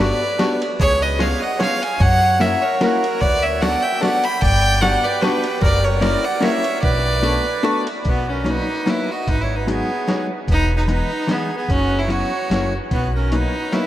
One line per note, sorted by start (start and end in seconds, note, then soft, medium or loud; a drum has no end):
0.00 0.11 G1 loud
0.00 0.21 B3 medium
0.00 0.21 D4 medium
0.00 0.22 F#4 medium
0.00 0.21 G4 soft
0.00 0.62 B4 medium
0.00 0.22 B4 medium
0.00 0.62 D5 loud
0.39 0.61 B3 medium
0.39 0.61 D4 medium
0.39 0.61 F#4 medium
0.39 0.61 G4 medium
0.39 0.61 B4 medium
0.39 snare medium
0.39 ride medium
0.62 ride medium
0.80 1.32 C#2 loud
0.80 1.00 G#4 medium
0.80 1.04 C#5 loud
0.80 kick medium
0.80 ride soft
1.01 1.20 B4 medium
1.01 1.23 D#5 loud
1.18 1.41 B3 medium
1.18 1.42 C#4 medium
1.18 1.41 F4 medium
1.18 1.41 G#4 medium
1.18 1.41 B4 medium
1.18 1.41 C#5 medium
1.18 1.44 F5 medium
1.18 snare medium
1.18 ride soft
1.40 1.59 D#5 medium
1.40 1.61 F#5 loud
1.59 1.81 B3 medium
1.59 1.81 C#4 medium
1.59 1.82 F4 medium
1.59 1.82 G#4 medium
1.59 1.82 B4 medium
1.59 1.79 C#5 medium
1.59 1.83 F5 loud
1.59 snare medium
1.59 ride soft
1.81 2.00 F5 medium
1.81 2.02 G#5 loud
1.81 ride medium
1.99 2.52 F#2 loud
1.99 2.39 C#5 loud
1.99 2.42 F#5 loud
1.99 kick medium
1.99 ride soft
2.40 2.62 A#3 medium
2.40 2.62 C#4 medium
2.40 2.62 E4 soft
2.40 2.62 F#4 soft
2.40 2.62 A#4 medium
2.40 2.62 C#5 medium
2.40 2.63 E5 loud
2.40 snare medium
2.40 ride medium
2.62 2.81 A#4 medium
2.62 2.83 C#5 medium
2.81 3.03 A#3 medium
2.81 3.03 C#4 medium
2.81 3.03 E4 medium
2.81 3.03 F#4 medium
2.81 3.22 F#4 medium
2.81 3.03 A#4 medium
2.81 3.22 A#4 medium
2.81 snare medium
2.81 ride medium
3.04 ride medium
3.21 3.74 D2 medium
3.21 3.44 B4 medium
3.21 3.44 D5 loud
3.21 kick medium
3.21 ride soft
3.42 3.61 C#5 medium
3.42 3.63 E5 medium
3.61 3.84 B3 medium
3.61 3.84 D4 soft
3.61 3.84 F#4 medium
3.61 3.84 A4 medium
3.61 3.84 B4 medium
3.61 3.83 D5 medium
3.61 3.84 F#5 loud
3.61 snare medium
3.61 ride soft
3.82 4.01 E5 loud
3.82 4.03 G5 medium
4.01 4.24 B3 medium
4.01 4.23 D4 medium
4.01 4.24 F#4 medium
4.01 4.24 A4 medium
4.01 4.24 B4 medium
4.01 4.24 D5 medium
4.01 4.26 F#5 loud
4.01 snare medium
4.01 ride soft
4.24 4.42 G5 medium
4.24 4.42 B5 loud
4.24 ride medium
4.42 4.94 G1 medium
4.42 4.79 D5 loud
4.42 4.83 G5 loud
4.42 kick medium
4.42 ride soft
4.81 5.04 B3 soft
4.81 5.04 D4 medium
4.81 5.04 F#4 medium
4.81 5.05 G4 medium
4.81 5.04 B4 medium
4.81 5.04 D5 medium
4.81 5.05 F#5 loud
4.81 snare medium
4.81 ride medium
5.03 5.22 B4 medium
5.03 5.23 D5 loud
5.21 5.44 B3 medium
5.21 5.45 D4 medium
5.21 5.45 F#4 medium
5.21 5.62 G4 medium
5.21 5.45 G4 medium
5.21 5.62 B4 medium
5.21 5.45 B4 medium
5.21 snare medium
5.21 ride soft
5.44 ride medium
5.61 6.14 F#1 loud
5.61 5.82 A#4 medium
5.61 5.86 D5 loud
5.61 kick medium
5.61 ride soft
5.83 6.01 A#4 medium
5.83 6.03 C#5 medium
6.01 6.24 A#3 medium
6.01 6.24 C#4 medium
6.01 6.24 E4 medium
6.01 6.24 F#4 medium
6.01 6.24 A#4 medium
6.01 6.26 D5 loud
6.01 snare medium
6.01 ride medium
6.24 6.43 D5 medium
6.24 6.44 F#5 medium
6.40 6.64 A#3 medium
6.40 6.64 C#4 medium
6.40 6.64 E4 medium
6.40 6.64 F#4 medium
6.40 6.64 A#4 medium
6.40 6.83 C#5 medium
6.40 6.82 E5 loud
6.40 snare medium
6.40 ride soft
6.64 ride medium
6.82 7.36 B1 medium
6.82 7.83 B4 medium
6.82 7.82 D5 loud
6.82 kick medium
6.82 ride soft
7.22 7.45 A3 medium
7.22 7.45 B3 soft
7.22 7.45 D4 medium
7.22 7.45 F#4 medium
7.22 7.46 A4 medium
7.22 ride soft
7.63 7.86 A3 medium
7.63 7.86 B3 medium
7.63 7.86 D4 medium
7.63 7.87 F#4 medium
7.63 7.86 A4 medium
7.63 ride medium
7.87 ride medium
8.05 8.58 B1 medium
8.05 8.31 B3 medium
8.05 kick medium
8.05 closed hi-hat soft
8.09 8.28 F#4 medium
8.29 8.50 C#4 medium
8.29 8.48 A#4 medium
8.44 8.68 F#3 soft
8.44 8.68 A#3 soft
8.44 8.68 B3 soft
8.44 8.68 D#4 medium
8.44 closed hi-hat soft
8.49 8.91 D#4 medium
8.49 8.88 B4 medium
8.86 9.08 F#3 medium
8.86 9.09 A#3 medium
8.86 9.09 B3 medium
8.86 9.09 D#4 medium
8.86 9.13 E4 medium
8.86 snare medium
8.86 closed hi-hat medium
8.90 9.10 B4 medium
9.11 9.30 F#4 medium
9.11 9.29 D#5 medium
9.27 9.80 G#1 medium
9.27 9.42 D#4 loud
9.27 9.42 B4 medium
9.27 kick medium
9.27 closed hi-hat soft
9.41 9.57 E4 medium
9.41 9.55 C#5 medium
9.56 9.69 D#4 medium
9.56 9.69 B4 medium
9.67 9.89 F#3 medium
9.67 9.89 G#3 soft
9.67 9.89 B3 soft
9.67 10.27 B3 medium
9.67 9.90 D#4 medium
9.67 10.27 G#4 medium
9.67 closed hi-hat soft
10.08 10.30 F#3 medium
10.08 10.30 G#3 medium
10.08 10.30 B3 soft
10.08 10.30 D#4 medium
10.08 snare medium
10.08 closed hi-hat soft
10.48 11.00 E1 medium
10.48 10.74 B4 medium
10.48 kick medium
10.48 closed hi-hat soft
10.52 10.75 D#4 loud
10.77 10.88 D#4 medium
10.77 10.88 B4 medium
10.87 11.10 E3 medium
10.87 11.10 G#3 soft
10.87 11.10 B3 soft
10.87 11.10 D#4 medium
10.87 11.33 D#4 medium
10.87 11.27 B4 medium
10.87 closed hi-hat soft
11.27 11.50 E3 medium
11.27 11.50 G#3 medium
11.27 11.50 B3 medium
11.27 11.56 B3 medium
11.27 11.50 D#4 medium
11.27 11.56 G#4 medium
11.27 snare medium
11.27 closed hi-hat medium
11.56 11.72 B3 medium
11.56 11.69 G#4 medium
11.68 12.21 F#1 medium
11.68 12.00 C#4 loud
11.68 kick medium
11.68 closed hi-hat soft
11.73 11.98 F#4 medium
11.98 12.13 E4 medium
11.98 12.10 C#5 medium
12.08 12.31 F#3 soft
12.08 12.31 B3 soft
12.08 12.31 C#4 soft
12.08 12.31 E4 soft
12.08 12.73 F#4 medium
12.08 12.73 C#5 medium
12.08 closed hi-hat soft
12.50 12.77 F#1 medium
12.50 12.73 F#3 medium
12.50 12.73 A#3 soft
12.50 12.73 C#4 soft
12.50 12.73 E4 medium
12.50 snare medium
12.50 closed hi-hat soft
12.91 13.44 B1 medium
12.91 13.12 B3 medium
12.91 13.13 F#4 medium
12.91 kick medium
12.91 closed hi-hat soft
13.15 13.36 C#4 medium
13.15 13.31 A#4 medium
13.32 13.54 F#3 soft
13.32 13.54 A#3 soft
13.32 13.54 B3 soft
13.32 13.54 D#4 medium
13.32 13.75 D#4 medium
13.32 13.72 B4 medium
13.32 closed hi-hat soft
13.72 13.87 F#3 medium
13.72 13.87 A#3 medium
13.72 13.87 B3 medium
13.72 13.87 D#4 medium
13.72 13.87 E4 medium
13.72 13.87 B4 medium
13.72 snare medium
13.72 closed hi-hat soft